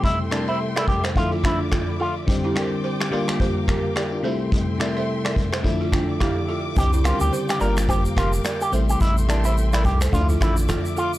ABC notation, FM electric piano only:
X:1
M:4/4
L:1/16
Q:"Swing 16ths" 1/4=107
K:Aphr
V:1 name="FM electric piano"
z16 | z8 z2 [GB]2 [EG] [DF]2 z | z8 z2 g2 f2 e2 | z16 |
z16 |]
V:2 name="FM electric piano" clef=bass
[C,G,A,E]2 [C,G,A,E]6 [D,F,A,E]6 z2 | [D,G,CG]2 [D,G,CG]4 [D,G,B,F]6 z2 [C,G,A,E]2- | [C,G,A,E]2 [C,G,A,E]6 [D,F,A,E]6 z2 | [D,G,CG]2 [^C,D,G,=CG]4 [D,G,B,F]6 z2 [=C,G,A,E]2- |
[C,G,A,E]2 [C,G,A,E]6 [D,F,A,DE]6 z2 |]